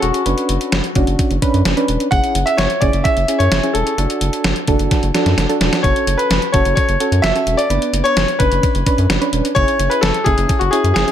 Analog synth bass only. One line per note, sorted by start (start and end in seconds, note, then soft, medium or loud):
0.03 0.12 E1 medium
0.26 0.35 F#1 loud
0.49 0.58 F#1 medium
0.73 0.81 F#1 loud
0.96 1.05 F#1 medium
1.07 1.16 F#1 loud
1.31 1.39 F#1 loud
1.54 1.63 F#2 loud
1.66 1.74 F#1 loud
1.89 1.98 E1 medium
2.12 2.21 F#1 loud
2.35 2.44 F#1 loud
2.58 2.67 F#1 loud
2.82 2.91 F#1 medium
2.93 3.02 F#1 loud
3.17 3.26 F#1 loud
3.40 3.49 F#2 loud
3.52 3.60 F#1 medium
3.75 3.84 E1 medium
3.98 4.07 F#1 loud
4.21 4.30 F#1 medium
4.45 4.53 F#1 loud
4.68 4.77 F#1 loud
4.80 4.88 F#1 loud
5.03 5.12 F#1 loud
5.26 5.35 F#2 medium
5.38 5.46 F#1 loud
5.61 5.70 E1 medium
5.84 5.93 F#1 loud
6.07 6.16 F#1 medium
6.31 6.39 F#1 loud
6.54 6.63 F#1 medium
6.66 6.74 F#1 loud
6.89 6.98 F#1 loud
7.12 7.21 F#2 medium
7.24 7.32 F#1 loud
7.47 7.56 E1 medium
7.70 7.79 F#1 loud
7.93 8.02 F#1 medium
8.17 8.26 F#1 loud
8.40 8.49 F#1 medium
8.52 8.61 F#1 loud
8.75 8.84 F#1 loud
8.98 9.07 F#2 loud
9.10 9.19 F#1 loud
9.33 9.42 E1 medium
9.56 9.65 F#1 loud
9.80 9.88 F#1 loud
10.03 10.12 F#1 loud
10.26 10.35 F#1 medium
10.38 10.47 F#1 loud
10.61 10.70 F#1 loud
10.84 10.93 F#2 medium
10.96 11.05 F#1 medium